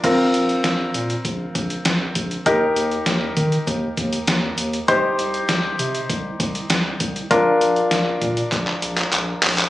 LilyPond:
<<
  \new Staff \with { instrumentName = "Grand piano" } { \time 4/4 \key bes \mixolydian \tempo 4 = 99 <c' f' bes'>1 | <ees' g' bes'>1 | <ees' g' c''>1 | <d' f' bes'>1 | }
  \new Staff \with { instrumentName = "Analog synth bass" } { \clef bass \time 4/4 \key bes \mixolydian bes,,8 bes,,8 bes,,8 bes,8 bes,,8 bes,,8 bes,,8 bes,,8 | ees,8 ees,8 ees,8 ees8 ees,8 ees,8 ees,8 ees,8 | c,8 c,8 c,8 c8 c,8 c,8 c,8 c,8 | bes,,8 bes,,8 bes,,8 bes,8 bes,,8 bes,,8 bes,,8 bes,,8 | }
  \new DrumStaff \with { instrumentName = "Drums" } \drummode { \time 4/4 <cymc hh bd>8 hh16 hh16 <hh sn>8 hh16 hh16 <hh bd>8 <hh bd>16 hh16 <hh sn>8 <hh bd>16 hh16 | <hh bd>8 hh16 hh16 <hh sn>8 <hh bd>16 hh16 <hh bd>8 <hh bd>16 hh16 <hh sn>8 hh16 hh16 | <hh bd>8 hh16 hh16 <hh sn>8 hh16 hh16 <hh bd>8 <hh bd>16 hh16 <hh sn>8 <hh bd>16 hh16 | <hh bd>8 hh16 hh16 <hh sn>8 <hh bd>16 hh16 <hc hh bd>16 hc16 hh16 <hc hh>16 <hc hh>8 <hc hho>16 <hc hh>16 | }
>>